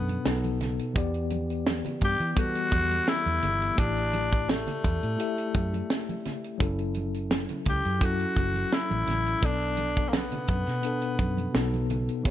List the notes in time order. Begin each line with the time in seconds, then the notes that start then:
Already playing: F#2 B2 B3 D4 A4
0.08 closed hi-hat, high conga
0.24 B1 B2 B3 D#4 A4, snare, muted conga
0.44 closed hi-hat, high conga
0.60 snare, closed hi-hat, muted conga, low conga
0.79 closed hi-hat
0.94 E2 E3 B3 G4, kick, closed hi-hat
0.98 D5
1.14 closed hi-hat
1.30 closed hi-hat, muted conga, high conga
1.50 closed hi-hat
1.66 snare, muted conga, high conga
1.85 closed hi-hat, low conga
2.01 G2 G4, kick, closed hi-hat, muted conga
2.20 E3, closed hi-hat
2.32 E3 B3 G4
2.37 G3 F#4 A4, kick, closed hi-hat, muted conga
2.55 closed hi-hat
2.72 E2, kick, closed hi-hat, muted conga, high conga
2.90 closed hi-hat, high conga
3.08 E4, snare
3.26 E2, closed hi-hat, high conga
3.43 G1, closed hi-hat, muted conga, low conga
3.62 closed hi-hat
3.76 A1 A3 D4 E4 G4 D5, kick, closed hi-hat
3.97 closed hi-hat
4.13 closed hi-hat, muted conga, high conga
4.32 kick, closed hi-hat
4.49 A3, snare, high conga
4.67 closed hi-hat, low conga
4.84 E2, kick, closed hi-hat, muted conga
5.03 A2, closed hi-hat
5.17 A3 E4 G4 E5, closed hi-hat
5.38 closed hi-hat
5.55 F#2, kick, closed hi-hat, muted conga, high conga
5.73 closed hi-hat, high conga
5.90 snare
6.09 closed hi-hat, high conga
6.25 snare, closed hi-hat, low conga
6.44 closed hi-hat
6.58 F#1 F#3 C#4 E4 A4, kick, closed hi-hat
6.62 muted conga
6.79 closed hi-hat
6.94 closed hi-hat, high conga
7.14 closed hi-hat
7.31 snare, muted conga, high conga
7.49 closed hi-hat, low conga
7.65 C#2 G4, kick, closed hi-hat, muted conga
7.85 F#2, closed hi-hat
7.99 F#3 C#4 E4, kick, closed hi-hat, muted conga
8.03 F#4 A4
8.20 closed hi-hat
8.36 F#1, kick, closed hi-hat, muted conga, high conga
8.54 closed hi-hat, high conga
8.72 E4, snare, muted conga
8.90 A1, closed hi-hat, high conga
9.07 A1, snare, closed hi-hat, low conga
9.26 closed hi-hat
9.40 B1 B2 B3 D4 A4, kick, closed hi-hat, muted conga
9.45 D4
9.61 closed hi-hat
9.77 closed hi-hat, high conga
9.97 kick, closed hi-hat
10.09 A#3
10.13 B3, snare, muted conga, high conga
10.32 closed hi-hat, low conga
10.47 F#2, kick, closed hi-hat, muted conga
10.67 B2, snare, closed hi-hat
10.82 B2 B3 D4 A4, closed hi-hat
11.02 closed hi-hat
11.19 F#2, kick, closed hi-hat, muted conga, high conga
11.37 closed hi-hat, high conga
11.53 B1 B2 B3 D#4 A4, snare, muted conga
11.74 closed hi-hat, high conga
11.90 closed hi-hat, muted conga, low conga
12.09 closed hi-hat
12.23 E2 E3 B3 G4 C#5, kick, closed hi-hat